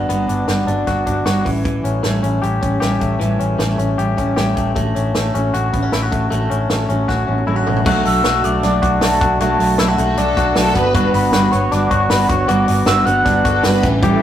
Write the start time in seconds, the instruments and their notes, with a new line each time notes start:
Already playing: clean electric guitar D4, steel-string acoustic guitar F#4
0.09 fingered electric bass G1, steel-string acoustic guitar G3 B3 D4 F#4, closed hi-hat
0.29 fingered electric bass G1, clean electric guitar D4, closed hi-hat
0.48 fingered electric bass G1, steel-string acoustic guitar G3 B3 D4 F#4, snare, closed hi-hat
0.67 fingered electric bass G1, steel-string acoustic guitar B3 D4 F#4, closed hi-hat
0.86 fingered electric bass G1, steel-string acoustic guitar G3 B3 D4 F#4, kick, snare, closed hi-hat
1.06 fingered electric bass G1, steel-string acoustic guitar B3 D4 F#4, kick, closed hi-hat
1.25 fingered electric bass G1, steel-string acoustic guitar G3 B3 D4 F#4, snare, closed hi-hat
1.45 fingered electric bass A1, steel-string acoustic guitar A2 E3 G3 C#4 E4, kick, open hi-hat
1.65 clean electric guitar E3, kick, closed hi-hat
1.84 fingered electric bass A1, clean electric guitar C#4, closed hi-hat
2.03 fingered electric bass A1, steel-string acoustic guitar A2 E3 G3 C#4 E4, clean electric guitar A3, snare, closed hi-hat
2.22 fingered electric bass A1, steel-string acoustic guitar G3 C#4 E4, closed hi-hat
2.41 fingered electric bass A1, steel-string acoustic guitar E3 G3 C#4 E4, clean electric guitar G4, closed hi-hat
2.61 fingered electric bass A1, steel-string acoustic guitar G3 C#4 E4, kick, closed hi-hat
2.80 fingered electric bass A1, steel-string acoustic guitar A2 E3 G3 C#4 E4, clean electric guitar G4, snare, closed hi-hat
3.00 fingered electric bass A1, clean electric guitar A3, kick, closed hi-hat
3.19 fingered electric bass A1, steel-string acoustic guitar A2 E3 G3 C#4 E4, closed hi-hat
3.39 fingered electric bass A1, clean electric guitar C#4, closed hi-hat
3.58 fingered electric bass A1, steel-string acoustic guitar A2 E3 G3 C#4 E4, clean electric guitar A3, snare, closed hi-hat
3.77 fingered electric bass A1, steel-string acoustic guitar G3 C#4 E4, closed hi-hat
3.97 fingered electric bass A1, steel-string acoustic guitar E3 G3 C#4 E4, clean electric guitar G4, closed hi-hat
4.16 fingered electric bass A1, steel-string acoustic guitar G3 C#4 E4, kick, closed hi-hat
4.36 fingered electric bass A1, steel-string acoustic guitar A2 E3 G3 C#4 E4, clean electric guitar G4, snare, closed hi-hat
4.56 fingered electric bass A1, clean electric guitar A3, kick, closed hi-hat
4.74 fingered electric bass A1, steel-string acoustic guitar A2 D3 A3 C#4 F#4, kick, closed hi-hat
4.95 fingered electric bass A1, clean electric guitar C#4, closed hi-hat
5.15 fingered electric bass A1, steel-string acoustic guitar A2 D3 A3 C#4 F#4, snare, closed hi-hat
5.33 fingered electric bass A1, steel-string acoustic guitar A3 C#4 F#4, closed hi-hat
5.53 fingered electric bass A1, steel-string acoustic guitar D3 A3 C#4 F#4, closed hi-hat
5.72 fingered electric bass A1, steel-string acoustic guitar A3 C#4 F#4, clean electric guitar B3, kick, closed hi-hat
5.83 clean electric guitar C#4
5.92 fingered electric bass A1, steel-string acoustic guitar A2 D3 A3 C#4 F#4, clean electric guitar E4, snare, closed hi-hat
6.02 clean electric guitar F#4
6.12 fingered electric bass A1, clean electric guitar A3, kick, closed hi-hat
6.31 fingered electric bass A1, steel-string acoustic guitar A2 D3 A3 C#4 F#4, closed hi-hat
6.50 fingered electric bass A1, clean electric guitar C#4, closed hi-hat
6.69 fingered electric bass A1, steel-string acoustic guitar A2 D3 A3 C#4 F#4, snare, closed hi-hat
6.89 fingered electric bass A1, steel-string acoustic guitar A3 C#4 F#4, closed hi-hat
7.09 fingered electric bass A1, steel-string acoustic guitar D3 A3 C#4 F#4, kick, snare
7.27 fingered electric bass A1, steel-string acoustic guitar A3 C#4 F#4, high tom
7.38 high tom
7.46 fingered electric bass A1, steel-string acoustic guitar A2 D3 A3 C#4 F#4, clean electric guitar E4, mid tom
7.56 clean electric guitar F#4
7.66 fingered electric bass A1, clean electric guitar A3, floor tom
7.76 floor tom
7.85 fingered electric bass B1, steel-string acoustic guitar B2 F#3 A3 D4 F#4, kick, crash
8.05 fingered electric bass B1, clean electric guitar A3, soft synth lead E6, hi-hat pedal, open hi-hat
8.24 fingered electric bass B1, steel-string acoustic guitar B2 F#3 A3 D4 F#4, snare, hi-hat pedal, open hi-hat
8.43 fingered electric bass B1, steel-string acoustic guitar A3 D4 F#4, soft synth lead D6, hi-hat pedal, open hi-hat
8.62 fingered electric bass B1, steel-string acoustic guitar F#3 A3 D4 F#4, snare, hi-hat pedal, open hi-hat
8.82 fingered electric bass B1, clean electric guitar F#4, kick, hi-hat pedal, open hi-hat
9.01 fingered electric bass B1, steel-string acoustic guitar B2 F#3 A3 D4 F#4, soft synth lead A5, snare, hi-hat pedal, open hi-hat
9.20 fingered electric bass B1, steel-string acoustic guitar A3 D4 F#4, kick, hi-hat pedal, open hi-hat
9.40 fingered electric bass B1, steel-string acoustic guitar B2 F#3 A3 D4 F#4, soft synth lead A5, hi-hat pedal, open hi-hat
9.60 fingered electric bass B1, clean electric guitar A3, hi-hat pedal, open hi-hat
9.78 fingered electric bass B1, steel-string acoustic guitar B2 F#3 A3 D4 F#4, violin section E4, clean electric guitar E4, snare, hi-hat pedal, open hi-hat
9.88 clean electric guitar F#4
9.97 fingered electric bass B1, steel-string acoustic guitar A3 D4 F#4, violin section F#4, hi-hat pedal, open hi-hat
10.17 fingered electric bass B1, steel-string acoustic guitar F#3 A3 D4 F#4, violin section A4, hi-hat pedal, open hi-hat
10.37 fingered electric bass B1, clean electric guitar F#4, kick, hi-hat pedal, open hi-hat
10.55 fingered electric bass B1, steel-string acoustic guitar B2 F#3 A3 D4 F#4, violin section A4, snare, hi-hat pedal, open hi-hat
10.74 fingered electric bass G1, steel-string acoustic guitar D4 F#4, violin section B4, kick, hi-hat pedal, open hi-hat
10.78 steel-string acoustic guitar B3
10.94 steel-string acoustic guitar G3 B3 D4 F#4, kick, hi-hat pedal, open hi-hat
11.14 fingered electric bass G1, clean electric guitar B3, soft synth lead B5, hi-hat pedal, open hi-hat
11.33 fingered electric bass G1, steel-string acoustic guitar G3 B3 D4 F#4, soft synth lead B5, snare, hi-hat pedal, open hi-hat
11.51 fingered electric bass G1, steel-string acoustic guitar D4 F#4, soft synth lead C#6, hi-hat pedal, open hi-hat
11.56 steel-string acoustic guitar B3
11.71 fingered electric bass G1, steel-string acoustic guitar G3 B3 D4 F#4, soft synth lead D6, snare, hi-hat pedal, open hi-hat
11.90 fingered electric bass G1, clean electric guitar F#4, soft synth lead C#6, kick, hi-hat pedal, open hi-hat
12.10 fingered electric bass G1, steel-string acoustic guitar G3 B3 D4 F#4, soft synth lead B5, snare, hi-hat pedal, open hi-hat
12.28 fingered electric bass G1, steel-string acoustic guitar B3 D4 F#4, soft synth lead C#6, kick, hi-hat pedal, open hi-hat
12.48 fingered electric bass G1, steel-string acoustic guitar G3 B3 D4 F#4, soft synth lead D6, hi-hat pedal, open hi-hat
12.67 fingered electric bass G1, clean electric guitar B3, hi-hat pedal, open hi-hat
12.86 fingered electric bass G1, steel-string acoustic guitar G3 B3 D4 F#4, soft synth lead E6, snare, hi-hat pedal, open hi-hat
13.05 fingered electric bass G1, steel-string acoustic guitar B3 D4 F#4, soft synth lead F#6, hi-hat pedal, open hi-hat
13.24 fingered electric bass G1, steel-string acoustic guitar G3 B3 D4 F#4, kick, snare, hi-hat pedal, open hi-hat
13.45 fingered electric bass G1, clean electric guitar F#4, violin section A4, kick, hi-hat pedal, open hi-hat
13.63 fingered electric bass G1, steel-string acoustic guitar G3 B3 D4 F#4, violin section B4, snare, hi-hat pedal, open hi-hat
13.82 fingered electric bass A1, clean electric guitar E3, steel-string acoustic guitar G3 C#4 G4, violin section G4, kick, hi-hat pedal, open hi-hat
14.01 steel-string acoustic guitar A2 E3 G3 C#4 G4, string machine G4 E5 A5, kick, hi-hat pedal, open hi-hat